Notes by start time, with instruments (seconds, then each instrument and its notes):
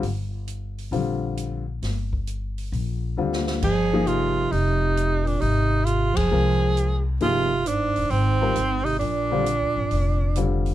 0.02 upright bass G1, open hi-hat
0.48 closed hi-hat
0.78 open hi-hat
0.91 upright bass A#1, upright piano D3 G3 C4 F4, open hi-hat
1.37 closed hi-hat
1.82 upright bass G1, snare, open hi-hat
2.13 kick
2.27 closed hi-hat
2.58 open hi-hat
2.72 upright bass A#1, open hi-hat
3.17 upright bass D2, upright piano D3 G3 C4 F4
3.33 snare
3.47 snare
3.62 upright bass G1, bass clarinet F3, tenor saxophone G#4, kick, crash
3.93 upright piano F3 A#3 D#4 G#4
4.07 bass clarinet C3, tenor saxophone F4, closed hi-hat
4.50 upright bass F1, bass clarinet C3, tenor saxophone D#4, open hi-hat
4.97 closed hi-hat
5.25 bass clarinet A#2, tenor saxophone D4, open hi-hat
5.39 upright bass G#1, bass clarinet C3, tenor saxophone D#4, open hi-hat
5.84 bass clarinet C3, tenor saxophone F4, closed hi-hat
6.14 upright bass F#1, bass clarinet F3, tenor saxophone G#4, kick, ride
6.31 upright bass C2, upright piano G#3 C4 F4 A#4
6.77 closed hi-hat
7.21 upright bass G1, bass clarinet C3, upright piano F3 A#3 D#4 G#4, tenor saxophone F4, open hi-hat
7.65 bass clarinet G#2, tenor saxophone D4, closed hi-hat
7.96 upright bass F1, open hi-hat
8.10 upright bass G#1, bass clarinet G#2, tenor saxophone C4, open hi-hat
8.41 upright piano G3 C4 F4 A#4
8.56 upright bass G#1, closed hi-hat
8.83 bass clarinet C3, tenor saxophone D#4, open hi-hat
8.99 upright bass A#1, bass clarinet A#2, tenor saxophone D4, open hi-hat
9.31 upright piano D3 G3 C4 F4
9.46 closed hi-hat
9.61 upright bass D2
9.76 upright bass G#1
9.91 upright bass F1, open hi-hat
10.36 upright piano D3 G3 C4 F4, closed hi-hat
10.66 open hi-hat